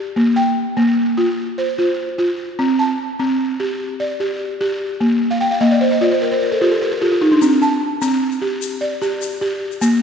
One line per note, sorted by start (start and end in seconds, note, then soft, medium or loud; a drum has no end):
0.00 0.17 G4 medium
0.16 0.57 A#3 medium
0.36 0.97 G5 medium
0.77 1.17 A#3 medium
1.17 1.58 F4 medium
1.58 2.19 C5 medium
1.78 2.17 F4 medium
2.18 2.59 F4 medium
2.59 2.99 C4 medium
2.79 3.40 A5 medium
3.19 3.60 C4 medium
3.60 4.00 G4 medium
4.00 4.60 D5 medium
4.20 4.59 G4 medium
4.61 5.01 G4 medium
5.01 5.41 A#3 medium
5.31 5.49 F5 medium
5.41 5.59 G5 medium
5.51 5.70 F5 medium
5.60 6.01 A#3 medium
5.60 5.79 D#5 medium
5.71 5.90 D5 medium
5.81 6.00 C5 medium
5.91 6.10 D#5 medium
6.01 6.41 F4 medium
6.01 6.20 D5 medium
6.11 6.30 C5 medium
6.22 6.40 A#4 medium
6.31 6.50 C5 medium
6.42 6.60 A#4 medium
6.51 6.70 A4 medium
6.61 7.00 F4 medium
6.61 6.80 G4 medium
6.72 6.90 A4 medium
6.81 7.00 A#4 medium
6.91 7.10 A4 medium
7.01 7.11 F4 medium
7.01 7.20 G4 medium
7.12 7.30 F4 medium
7.21 7.40 D#4 medium
7.32 7.50 D4 medium
7.42 7.82 C4 medium
7.42 shaker medium
7.62 8.22 A5 medium
7.62 shaker soft
8.02 8.42 C4 medium
8.02 shaker medium
8.32 shaker soft
8.42 8.82 G4 medium
8.62 shaker medium
8.81 9.41 D5 medium
9.02 9.40 G4 medium
9.02 shaker soft
9.22 shaker medium
9.41 9.81 G4 medium
9.72 shaker soft
9.81 10.02 A#3 medium
9.81 shaker medium